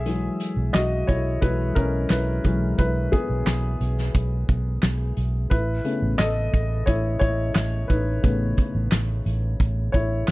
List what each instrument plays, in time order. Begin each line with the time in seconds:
Already playing: fingered electric bass B1, grand piano G#4 E5
0.05 grand piano E3 F#3 G#3, closed hi-hat
0.40 closed hi-hat
0.57 fingered electric bass B1
0.73 fingered electric bass B1, grand piano F#4 D#5, snare, clap, closed hi-hat
1.07 fingered electric bass B1, grand piano E4 C#5, kick, closed hi-hat
1.41 fingered electric bass B1, grand piano E3 F#3 G#3 E4 B4, kick, closed hi-hat
1.75 fingered electric bass B1, grand piano C#4 A#4, kick, closed hi-hat
2.10 fingered electric bass B1, grand piano E4 B4, snare, clap, closed hi-hat
2.44 fingered electric bass B1, grand piano E3 F#3 G#3, kick, closed hi-hat
2.78 fingered electric bass B1, grand piano E4 B4, kick, closed hi-hat
3.12 grand piano B3 G#4, kick, closed hi-hat
3.30 fingered electric bass B1
3.46 fingered electric bass B1, snare, clap, closed hi-hat
3.80 fingered electric bass B1, closed hi-hat
3.98 snare
4.15 fingered electric bass B1, kick, closed hi-hat
4.49 fingered electric bass B1, kick, closed hi-hat
4.83 fingered electric bass B1, snare, clap, closed hi-hat
5.17 fingered electric bass B1, closed hi-hat
5.50 fingered electric bass A1, grand piano E4 B4, kick, closed hi-hat
5.84 grand piano C#3 A3 B3, closed hi-hat
6.02 fingered electric bass A1
6.18 fingered electric bass A1, grand piano A4 D#5, snare, clap, closed hi-hat
6.54 fingered electric bass A1, kick, closed hi-hat
6.86 fingered electric bass A1, grand piano E4 C#5, kick, closed hi-hat
7.19 fingered electric bass A1, grand piano E4 C#5, kick, closed hi-hat
7.55 fingered electric bass A1, snare, clap, closed hi-hat
7.88 fingered electric bass A1, grand piano D#4 B4, kick, closed hi-hat
8.23 fingered electric bass A1, grand piano C#3 A3 B3, kick, closed hi-hat
8.57 kick, closed hi-hat
8.75 fingered electric bass A1
8.92 fingered electric bass A1, snare, clap, closed hi-hat
9.26 fingered electric bass A1, closed hi-hat
9.60 fingered electric bass A1, kick, closed hi-hat
9.92 fingered electric bass A1, grand piano E4 C#5, kick, closed hi-hat
10.28 fingered electric bass A1, snare, clap, closed hi-hat